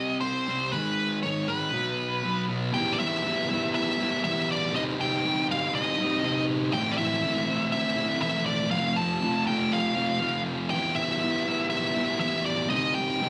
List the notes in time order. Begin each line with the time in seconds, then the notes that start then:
Already playing: C3 G3 C4 D#5
0.20 C3 G3 C4 C5
0.47 C3 G3 C4
0.72 G#2 D#3 G#3 B4
1.23 G#2 D#3 G#3 C#5
1.48 G#2 D#3 G#3 B4
1.73 B2 F#3 B3
2.23 B2 F#3 B3
2.49 B2 F#3 B3
2.73 E3 G3 B3 E4 G5
2.93 D5
2.97 G3 B3 E4 E5
3.23 E3 G3 B3 E4
3.48 G3 B3 E4
3.75 E5
3.98 G3 B3 E4
4.24 E3 G3 B3 E4 E5
4.52 D5
4.73 C3 G3 C4 D#4 D#5
4.98 G3 C4 D#4 G5
5.23 C3 G3 C4 D#4
5.47 G3 C4 D#4 F5
5.75 D#5
5.97 G3 C4 D#4
6.23 C3 G3 C4 D#4
6.73 A2 E3 A3 C4 E4 G5
6.91 D5
6.98 A3 C4 E4 E5
7.22 E3 A3 C4 E4
7.47 A3 C4 E4
7.72 E5
7.96 A3 C4 E4
8.21 A2 E3 A3 C4 E4 E5
8.46 D5
8.71 F3 A3 C4 F4 F5
8.96 A3 C4 F4 A5
9.21 F3 A3 C4 F4
9.46 A3 C4 F4 G5
9.72 F5
9.95 A3 C4 F4
10.21 F3 A3 C4 F4
10.70 E3 G3 B3 E4 G5
10.95 G3 B3 E4 E5
11.21 E3 G3 B3 E4
11.45 G3 B3 E4
11.70 E5
11.95 G3 B3 E4
12.20 E3 G3 B3 E4 E5
12.46 D5
12.69 C3 G3 C4 D#4 D#5
12.94 G3 C4 D#4 G5
13.20 C3 G3 C4 D#4